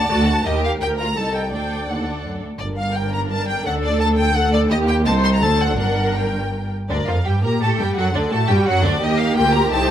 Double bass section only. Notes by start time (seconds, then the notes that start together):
0.11 D2
0.46 D#2
0.81 D2
1.16 C2
1.53 D2
2.60 G1
3.67 D2
4.71 D#2
5.08 C2
5.43 D2
5.79 G1
6.90 D2
7.07 F2
7.26 G2
7.43 A#2
7.61 A2
7.79 G2
7.96 F#2
8.14 D2
8.32 A2
8.49 G2
8.66 F#2
8.85 D2
9.02 D#2
9.37 D2
9.72 C2